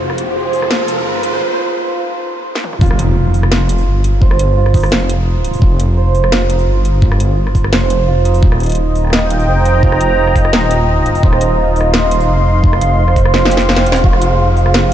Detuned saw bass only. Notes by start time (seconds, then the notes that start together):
0.01 F1
1.06 G1
2.81 F1
3.87 G1
4.39 G1
4.92 F1
5.62 F1
6.67 G1
7.20 G1
7.72 F1
8.43 D#1
9.48 F1
10.01 F1
10.53 D#1
11.23 D#1
12.28 F1
12.81 F1
13.34 F1
13.87 D#1
14.04 F1